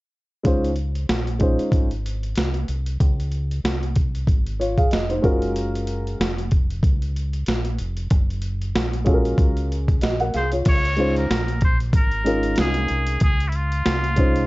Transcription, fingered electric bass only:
0.45 1.06 C#2 medium
1.09 1.57 A#1 medium
1.72 2.33 G#1 medium
2.37 2.67 C2 medium
2.69 2.99 C2 medium
3.01 3.61 C#2 medium
3.64 4.25 C2 medium
4.28 4.89 G#1 medium
4.92 5.22 F1 medium
5.24 6.16 F#1 medium
6.20 6.80 F1 medium
6.83 7.44 C#2 medium
7.48 7.78 A#1 medium
7.80 8.10 F1 medium
8.11 8.72 F#1 medium
8.75 9.36 A#1 medium
9.38 9.99 C#2 medium
10.03 10.33 A#1 medium
10.35 10.65 C2 medium
10.66 11.27 C#2 loud
11.30 11.91 A#1 medium
11.93 12.54 G#1 medium
12.59 12.89 C2 medium
12.90 13.20 C2 medium
13.21 13.82 C#2 medium
13.86 14.47 C2 medium

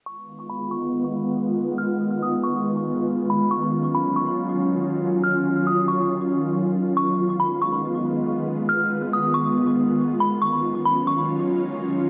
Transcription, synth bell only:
0.06 0.47 C#6 loud
0.49 0.70 B5 medium
0.71 0.91 C#6 medium
1.78 2.19 F6 loud
2.23 2.43 D#6 medium
2.43 2.64 C#6 medium
3.30 3.50 B5 medium
3.51 3.92 C#6 medium
3.95 4.15 B5 medium
4.16 4.37 C#6 medium
5.24 5.64 F6 loud
5.67 5.87 D#6 medium
5.88 6.09 C#6 medium
6.97 7.37 C#6 loud
7.40 7.60 B5 medium
7.62 7.82 C#6 medium
8.69 9.10 F6 loud
9.13 9.33 D#6 medium
9.34 9.55 C#6 medium
10.20 10.41 B5 medium
10.42 10.82 C#6 medium
10.85 11.06 B5 medium
11.07 11.27 C#6 medium

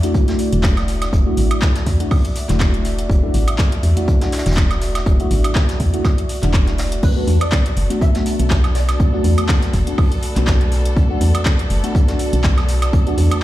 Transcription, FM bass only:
0.53 1.09 E1 loud
1.13 1.23 E1 loud
1.37 1.48 A1 loud
1.87 1.97 E2 medium
2.49 3.06 E1 loud
3.10 3.20 E1 loud
3.34 3.45 A1 loud
3.83 3.94 E2 medium
4.46 5.02 E1 loud
5.06 5.17 E1 loud
5.31 5.41 A1 loud
5.80 5.91 E2 medium
6.43 6.99 E1 loud
7.03 7.14 B1 loud
7.27 7.38 E2 loud
7.77 7.87 F#1 medium
8.40 8.96 B1 loud
9.00 9.10 B1 loud
9.24 9.35 E2 loud
9.74 9.84 F#1 medium
10.36 10.93 B1 loud
10.96 11.07 B1 loud
11.21 11.32 E2 loud
11.70 11.81 F#1 medium
12.33 12.89 B1 loud
12.93 13.04 B1 loud
13.18 13.28 E2 loud

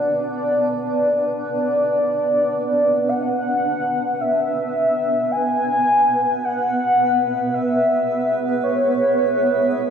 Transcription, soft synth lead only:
0.00 0.85 D5 medium
0.87 3.10 D5 loud
3.09 4.22 F#5 loud
4.21 5.33 E5 medium
5.31 6.46 G#5 loud
6.44 7.55 F#5 loud
7.54 8.63 E5 loud
8.64 9.90 C#5 medium

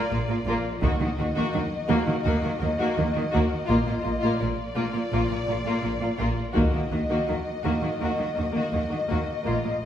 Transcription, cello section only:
0.10 0.18 A#2 soft
0.29 0.36 A#2 soft
0.45 0.53 A#2 medium
0.81 0.88 D#3 medium
1.00 1.07 D#3 soft
1.17 1.24 D#3 soft
1.35 1.42 D#3 medium
1.53 1.61 D#3 soft
1.90 1.97 D#3 medium
2.07 2.14 D#3 soft
2.25 2.33 D#3 soft
2.44 2.51 D#3 soft
2.62 2.69 D#3 soft
2.80 2.87 D#3 medium
2.98 3.05 D#3 soft
3.16 3.23 D#3 soft
3.34 3.41 D#3 medium
3.70 3.77 A#2 medium
3.88 3.95 A#2 soft
4.05 4.12 A#2 soft
4.23 4.30 A#2 medium
4.41 4.48 A#2 soft
4.76 4.83 A#2 soft
4.94 5.01 A#2 soft
5.12 5.19 A#2 soft
5.30 5.37 A#2 soft
5.47 5.55 A#2 soft
5.64 5.72 A#2 soft
5.82 5.90 A#2 soft
6.01 6.09 A#2 soft
6.20 6.27 A#2 medium
6.54 6.62 D#3 soft
6.73 6.81 D#3 soft
6.92 6.99 D#3 soft
7.09 7.17 D#3 soft
7.28 7.35 D#3 soft
7.64 7.71 D#3 soft
7.82 7.90 D#3 soft
8.01 8.08 D#3 soft
8.18 8.26 D#3 soft
8.37 8.44 D#3 soft
8.56 8.63 D#3 soft
8.73 8.80 D#3 soft
8.92 8.99 D#3 soft
9.10 9.18 D#3 soft
9.46 9.54 A#2 soft
9.65 9.72 A#2 soft

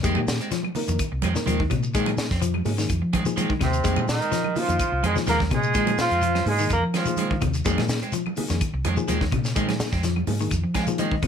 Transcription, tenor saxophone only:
3.63 4.06 C3 medium
4.11 4.60 D#3 medium
4.59 5.05 F3 medium
5.07 5.17 G#3 medium
5.30 5.40 A#3 loud
5.55 5.98 G#3 medium
6.01 6.45 F3 medium
6.49 6.70 G#3 medium
6.73 6.83 A#3 medium
6.96 7.40 F3 medium

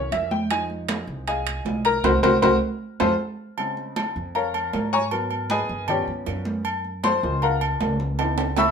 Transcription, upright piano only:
0.00 0.28 E3 medium
0.00 0.29 A#3 medium
0.00 0.29 C#4 medium
0.00 0.12 C#5 medium
0.12 0.31 E5 medium
0.31 0.50 G5 medium
0.50 2.00 F3 medium
0.50 2.00 G#3 medium
0.50 2.01 D#4 medium
0.50 0.62 G#5 medium
1.28 1.82 G#4 medium
1.28 1.82 D#5 medium
1.28 1.82 F5 medium
1.28 1.81 G#5 medium
1.85 2.03 A#4 loud
1.85 2.04 A#5 loud
2.04 2.17 F#4 medium
2.04 2.17 A#4 medium
2.04 2.17 C5 loud
2.23 2.36 F#4 loud
2.23 2.36 A#4 loud
2.23 2.36 C5 loud
2.42 2.55 F#4 loud
2.42 2.55 A#4 loud
2.42 2.55 C5 loud
3.00 3.13 F4 medium
3.00 3.13 A4 loud
3.00 3.13 C5 loud
3.57 4.13 C#3 medium
3.57 4.13 G#3 soft
3.57 4.13 C4 medium
4.35 4.89 A#4 medium
4.35 4.89 C#5 medium
4.35 4.89 F5 medium
4.35 4.89 A#5 medium
4.93 5.05 C#5 medium
4.93 5.05 G#5 medium
4.93 5.05 A#5 medium
4.93 5.04 C#6 loud
5.11 5.85 F#3 medium
5.11 5.85 B3 medium
5.11 5.85 A#4 medium
5.51 5.87 G#4 medium
5.51 5.86 B4 medium
5.51 5.86 D#5 medium
5.51 5.86 G#5 medium
5.88 6.62 F3 medium
5.88 6.62 B3 medium
5.88 6.62 C#4 medium
5.88 6.08 G4 medium
5.88 6.08 C#5 medium
5.88 6.08 D5 medium
5.88 6.08 G5 medium
7.04 7.40 C5 medium
7.04 7.40 C6 loud
7.23 8.15 G#3 medium
7.23 8.15 A#3 medium
7.23 8.15 F4 medium
7.43 7.61 A#4 medium
7.43 7.61 F5 medium
7.43 7.61 F#5 medium
7.43 7.61 A#5 medium
8.19 8.45 E3 medium
8.19 8.45 B3 soft
8.19 8.45 D#4 medium
8.58 8.71 E5 medium
8.58 8.71 B5 medium
8.58 8.71 C#6 medium
8.58 8.71 E6 loud

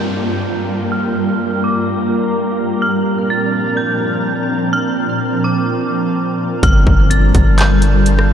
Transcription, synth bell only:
0.00 0.88 G6 medium
0.92 1.59 F6 loud
1.64 2.79 D6 medium
2.82 3.27 F6 medium
3.30 3.75 A6 medium
3.77 4.68 G6 medium
4.73 5.40 F6 medium
5.44 6.12 D6 medium
6.63 7.08 F6 loud
7.10 7.55 A6 medium
7.58 8.33 G6 medium

